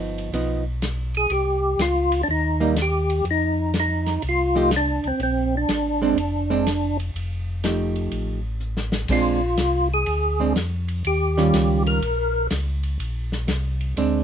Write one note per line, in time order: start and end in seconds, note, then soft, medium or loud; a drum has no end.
0.00 0.29 G1 medium
0.00 0.30 F3 medium
0.00 0.30 B3 medium
0.00 0.31 D#4 medium
0.18 ride soft
0.33 1.26 B1 medium
0.33 0.63 F3 medium
0.33 0.63 B3 medium
0.33 0.64 D#4 medium
0.33 ride medium
0.82 snare medium
0.82 hi-hat pedal soft
0.82 ride medium
1.14 1.32 G#4 medium
1.14 ride soft
1.30 1.76 C2 medium
1.30 1.81 G4 loud
1.30 ride soft
1.78 2.24 C#2 medium
1.78 2.22 F4 medium
1.78 snare medium
1.78 hi-hat pedal medium
1.78 ride medium
2.12 ride medium
2.23 2.28 D4 medium
2.28 3.22 D#2 medium
2.28 2.75 D#4 medium
2.60 2.75 G3 medium
2.60 2.75 A#3 medium
2.60 2.75 D#4 medium
2.76 snare medium
2.76 hi-hat pedal medium
2.76 ride medium
2.82 3.25 G4 medium
3.10 ride soft
3.24 4.18 F2 medium
3.24 ride soft
3.31 3.74 D#4 medium
3.74 snare medium
3.74 hi-hat pedal soft
3.74 ride medium
3.80 4.22 D#4 medium
4.06 snare soft
4.06 ride soft
4.22 5.00 C2 medium
4.22 ride medium
4.29 4.71 F4 medium
4.55 4.70 F3 medium
4.55 4.70 A3 medium
4.55 4.70 D#4 medium
4.55 4.71 G4 medium
4.71 snare medium
4.71 hi-hat pedal soft
4.71 ride medium
4.76 5.08 D4 medium
5.04 5.12 C2 soft
5.04 5.21 C4 medium
5.04 ride soft
5.20 5.65 A#1 medium
5.20 5.55 C4 medium
5.20 ride soft
5.57 6.97 D4 medium
5.69 6.14 G#1 medium
5.69 snare medium
5.69 hi-hat pedal soft
5.69 ride medium
6.02 6.16 G#3 medium
6.02 6.16 C4 medium
6.02 6.17 D4 medium
6.17 7.11 F1 medium
6.17 ride soft
6.50 6.65 G#3 medium
6.50 6.65 C4 medium
6.50 6.65 D4 medium
6.66 snare medium
6.66 hi-hat pedal soft
6.66 ride medium
7.00 ride soft
7.14 8.08 F1 medium
7.14 ride soft
7.64 8.39 F3 soft
7.64 8.39 A3 soft
7.64 8.39 D#4 medium
7.64 8.39 G4 medium
7.64 snare medium
7.64 hi-hat pedal medium
7.64 ride medium
7.96 ride soft
8.12 9.06 A1 medium
8.12 ride soft
8.60 hi-hat pedal soft
8.77 snare soft
8.92 snare medium
9.08 9.57 A#1 medium
9.08 9.39 G#3 medium
9.08 9.40 C4 medium
9.08 9.40 D4 medium
9.08 kick medium
9.08 crash medium
9.12 9.88 F4 medium
9.57 10.05 C2 medium
9.57 snare medium
9.57 hi-hat pedal medium
9.57 ride medium
9.94 10.53 G#4 medium
10.06 10.54 D2 medium
10.06 ride medium
10.40 10.54 G#3 medium
10.40 10.55 C4 medium
10.40 10.55 D4 medium
10.56 11.03 F2 medium
10.56 snare medium
10.56 hi-hat pedal medium
10.56 ride medium
10.88 ride soft
11.05 11.52 D#2 medium
11.05 11.83 G4 medium
11.05 ride medium
11.37 11.99 D#3 medium
11.37 11.99 G3 medium
11.37 11.99 C#4 medium
11.37 11.99 F4 medium
11.37 snare soft
11.54 12.01 C#2 medium
11.54 snare medium
11.54 hi-hat pedal medium
11.54 ride medium
11.86 12.47 A#4 medium
11.86 ride soft
12.01 12.49 A#1 medium
12.01 ride medium
12.50 12.98 C#2 medium
12.50 snare medium
12.50 hi-hat pedal medium
12.50 ride medium
12.83 ride soft
13.00 13.46 A#1 medium
13.00 ride medium
13.32 snare soft
13.48 13.95 C2 medium
13.48 snare medium
13.48 hi-hat pedal soft
13.48 ride medium
13.81 ride soft
13.97 14.24 D2 medium
13.97 14.24 G#3 medium
13.97 14.24 C4 medium
13.97 14.24 D4 medium
13.97 ride soft